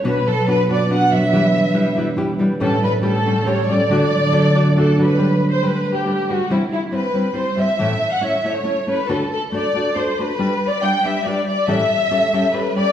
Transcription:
<<
  \new Staff \with { instrumentName = "Violin section" } { \time 3/4 \key d \major \tempo 4 = 139 b'8 a'8 b'8 d''8 fis''8 e''8~ | e''4. r4. | a'8 b'8 a'4 cis''8 d''8~ | d''2 a'8 b'8~ |
\key g \major \tuplet 3/2 { b'4 c''8 b'4 g'8~ } g'8 fis'8 | e'8 e'8 b'4 c''8 e''8~ | \tuplet 3/2 { e''4 fis''8 e''4 cis''8~ } cis''8 b'8 | a'8 a'8 d''4 c''8 b'8~ |
\tuplet 3/2 { b'4 d''8 } g''8 e''8 d''8 d''8 | e''2 b'8 d''8 | }
  \new Staff \with { instrumentName = "Nylon-string guitar" } { \time 3/4 \key d \major <b, fis b d' fis' b'>8 r8 <b d' fis' b'>8 <b d' fis' b'>8 <b d' fis' b'>8 <b d' fis' b'>8 | <e g e' g' b'>8 r8 <g e' g' b'>8 <g e' g' b'>8 <g e' g' b'>8 <g e' g' b'>8 | <a, e g cis' g' a'>8 r8 <g cis' g' a'>8 <g cis' g' a'>8 <g cis' g' a'>8 <g cis' g' a'>8 | <d a d' fis' a'>8 r8 <a d' fis' a'>8 <a d' fis' a'>8 <a d' fis' a'>8 <a d' fis' a'>8 |
\key g \major <g d' g' b'>8 r8 <g d' g' b'>8 r8 <g d' g' b'>8 <g d' g' b'>8 | <c e g c' e' c''>8 r8 <g c' e' c''>8 <g c' e' c''>8 <g c' e' c''>8 <g c' e' c''>8 | <a, e a cis' e' cis''>8 r8 <a cis' e' cis''>8 <a cis' e' cis''>8 <a cis' e' cis''>8 <a cis' e' cis''>8 | <d a d' fis' a'>8 r8 <a d' fis' a'>8 <a d' fis' a'>8 <a d' fis' a'>8 <a d' fis' a'>8 |
<g d' g' b'>8 r8 <g d' g' b'>8 <g d' g' b'>8 <g d' g' b'>8 r8 | <a, e g cis' g' a'>8 r8 <g cis' g' a'>8 <g cis' g' a'>8 <g cis' g' a'>8 <g cis' g' a'>8 | }
  \new Staff \with { instrumentName = "Harp" } { \clef bass \time 3/4 \key d \major b,8 fis8 b8 d'8 b8 fis8 | e8 g8 b8 e'8 b8 g8 | a,8 g8 a8 cis'8 a8 g8 | d8 fis8 a8 d'8 a8 fis8 |
\key g \major r2. | r2. | r2. | r2. |
r2. | r2. | }
>>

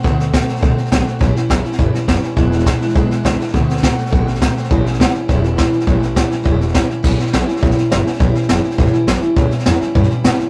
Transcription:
<<
  \new Staff \with { instrumentName = "Steel-string acoustic guitar" } { \time 4/4 \key a \mixolydian \tempo 4 = 206 <d a c' fis'>8 <a c' fis'>8 <d a c' fis'>8 <a c' fis'>8 <d a c' fis'>8 <a c' fis'>8 <d a c' fis'>8 <a c' fis'>8 | <a, e g cis' e'>8 <g cis' e'>8 <e g cis' e'>8 <g cis' e'>8 <a, e g cis' e'>8 <g cis' e'>8 <e g cis' e'>8 <g cis' e'>8 | <e, b, e gis d' e'>8 <e gis d' e'>8 <e gis d' e'>8 <e gis d' e'>8 <e, b, e gis d' e'>8 <e gis d' e'>8 <e gis d' e'>8 <e gis d' e'>8 | <d a c' fis'>8 <a c' fis'>8 <d a c' fis'>8 <a c' fis'>8 <d a c' fis'>8 <a c' fis'>8 <d a c' fis'>8 <a c' fis'>8 |
<a, e g cis' e'>8 <g cis' e'>8 <e g cis' e'>8 <g cis' e'>8 <a, e g cis' e'>8 <g cis' e'>8 <e g cis' e'>8 <g cis' e'>8 | <a, e g cis' e'>8 <g cis' e'>8 <e g cis' e'>8 <g cis' e'>8 <a, e g cis' e'>8 <g cis' e'>8 <e g cis' e'>8 <g cis' e'>8 | <a, e g cis' e'>8 <g cis' e'>8 <e g cis' e'>8 <g cis' e'>8 <a, e g cis' e'>8 <g cis' e'>8 <e g cis' e'>8 <g cis' e'>8 | <a, e g cis' e'>8 <g cis' e'>8 <e g cis' e'>8 <g cis' e'>8 <a, e g cis' e'>8 <g cis' e'>8 <e g cis' e'>8 <g cis' e'>8 |
<a, e g cis' e'>8 <g cis' e'>8 <e g cis' e'>8 <g cis' e'>8 <a, e g cis' e'>8 <g cis' e'>8 <e g cis' e'>8 <g cis' e'>8 | }
  \new Staff \with { instrumentName = "Upright bass" } { \clef bass \time 4/4 \key a \mixolydian d,4. r8 c,8 r8 b,,8 r8 | a,,8 r8 a,,8 r8 g,,8 r8 fis,,8 r8 | e,,4. r8 b,,8 r8 cis,8 r8 | d,4. r8 a,,4. r8 |
a,,4. r8 e,,4. r8 | a,,4. r8 e,,4. r8 | a,,8 r8 b,,8 r8 a,,8 r8 g,,8 r8 | a,,8 r8 fis,,8 r8 g,,8 r8 a,,8 r8 |
cis,8 r8 e,8 r8 g,8 r8 b,8 r8 | }
  \new DrumStaff \with { instrumentName = "Drums" } \drummode { \time 4/4 <bd sn>8 sn8 <hhp bd sn>8 sn16 sn16 <bd sn>8 sn16 sn16 <hhp bd sn>8 sn8 | <bd sn>8 sn8 <hhp bd sn>8 sn16 sn16 <bd sn>8 sn8 <hhp bd sn>8 sn8 | <bd sn>8 sn16 sn16 <hhp bd sn>8 sn16 sn16 <bd sn>8 sn8 <hhp bd sn>8 sn16 sn16 | <bd sn>8 sn16 sn16 <hhp bd sn>8 sn16 sn16 <bd sn>8 sn16 sn16 <hhp bd sn>8 sn16 sn16 |
<bd sn>8 sn16 sn16 <hhp bd sn>8 sn8 <bd sn>8 sn8 <hhp bd sn>8 sn16 sn16 | <bd sn>8 sn8 <hhp bd sn>8 sn8 <bd sn>8 sn16 sn16 <hhp bd sn>8 sn8 | <cymc bd sn>8 sn16 sn16 <hhp sn>8 sn16 sn16 <bd sn>16 sn16 sn8 <hhp sn>8 sn16 sn16 | <bd sn>8 sn16 sn16 <hhp sn>8 sn16 sn16 <bd sn>16 sn16 sn8 <hhp sn>8 sn8 |
<bd sn>8 sn16 sn16 <hhp sn>8 sn8 <bd sn>16 sn16 sn8 <hhp sn>8 sn8 | }
>>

